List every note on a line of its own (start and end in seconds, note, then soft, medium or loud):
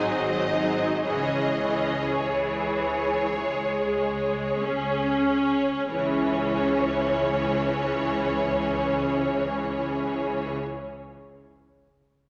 0.00 0.91 G#1 soft
0.00 0.47 F#3 soft
0.00 1.04 C4 medium
0.00 0.47 D#4 soft
0.00 0.47 G#4 soft
0.00 0.47 C5 soft
0.00 1.03 D#5 medium
0.49 1.04 F#3 soft
0.49 1.04 D#4 soft
0.49 1.03 G#4 soft
0.49 1.03 C5 soft
1.04 2.05 C#2 soft
1.04 1.60 E3 soft
1.04 1.60 C#4 soft
1.04 5.22 G#4 soft
1.04 1.60 G#4 soft
1.04 1.60 C#5 soft
1.04 2.17 D#5 medium
1.61 2.07 E3 soft
1.61 2.07 C#4 soft
1.61 2.76 G#4 soft
1.61 2.76 C#5 soft
2.19 3.24 C#2 soft
2.19 3.35 E3 soft
2.19 4.62 C#5 soft
2.79 3.98 G#4 soft
2.79 3.98 C#5 soft
3.39 4.47 C#2 soft
3.39 4.63 G#3 soft
4.00 5.24 G#4 soft
4.00 5.24 C#5 soft
4.62 5.76 C#2 soft
4.62 5.90 C#4 soft
5.26 5.90 G#4 soft
5.26 5.90 C#5 soft
5.91 10.51 C#2 soft
5.91 10.52 C#2 soft
5.91 10.52 E3 soft
5.91 10.53 C#4 soft
5.91 10.53 G#4 soft
5.91 10.53 C#5 soft
5.91 10.54 C#5 medium